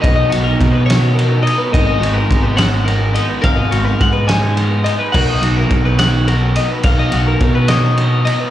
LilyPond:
<<
  \new Staff \with { instrumentName = "Clean electric guitar" } { \time 6/8 \key b \lydian \tempo 4. = 70 dis''2~ dis''8 r8 | dis''4. fis''4. | eis''4 fis''8 gis''4. | fis''4. fis''4. |
eis''4. dis''4 r8 | }
  \new Staff \with { instrumentName = "Clean electric guitar" } { \time 6/8 \key b \lydian ais'16 dis''16 fis'16 ais'8 b'16 cis''8 ais'8 dis''16 b'16 | ais'16 dis''16 fis'16 ais'8 b'16 cis''8 ais'8 dis''16 b'16 | ais'16 dis''16 fis'16 ais'8 b'16 cis''8 ais'8 dis''16 b'16 | ais'16 dis''16 fis'16 ais'8 b'16 cis''8 ais'8 dis''16 b'16 |
ais'16 dis''16 fis'16 ais'8 b'16 cis''8 ais'8 dis''16 b'16 | }
  \new Staff \with { instrumentName = "Overdriven electric guitar" } { \time 6/8 \key b \lydian <b, dis fis b dis'>8 <fis b dis'>8 <dis fis b dis'>8 <fis b dis'>8 <dis fis b dis'>8 <fis b dis'>8 | <gis, dis gis b dis'>8 <gis b dis'>8 <dis gis b dis'>8 <gis b dis'>8 <dis gis b dis'>8 <gis b dis'>8 | <gis, dis gis b dis'>8 <gis b dis'>8 <dis gis b dis'>8 <gis b dis'>8 <dis gis b dis'>8 <gis b dis'>8 | <b, dis fis b dis'>8 <fis b dis'>8 <dis fis b dis'>8 <fis b dis'>8 <dis fis b dis'>8 <fis b dis'>8 |
<b, dis fis b dis'>8 <fis b dis'>8 <dis fis b dis'>8 <fis b dis'>8 <dis fis b dis'>8 <fis b dis'>8 | }
  \new Staff \with { instrumentName = "Fingered electric bass" } { \clef bass \time 6/8 \key b \lydian b,,8 b,,8 b,2 | gis,,8 gis,,8 gis,,2 | gis,,8 gis,,8 gis,2 | b,,8 b,,8 b,,2 |
b,,8 b,,8 b,2 | }
  \new DrumStaff \with { instrumentName = "Drums" } \drummode { \time 6/8 <bd cymr>8 cymr8 <bd cymr>8 <cymr sn>8 cymr8 cymr8 | <bd cymr>8 cymr8 <bd cymr>8 <cymr sn>8 cymr8 cymr8 | <bd cymr>8 cymr8 <bd cymr>8 <cymr sn>8 cymr8 cymr8 | <cymc bd>8 cymr8 <bd cymr>8 <cymr sn>8 cymr8 cymr8 |
<bd cymr>8 cymr8 <bd cymr>8 <cymr sn>8 cymr8 cymr8 | }
>>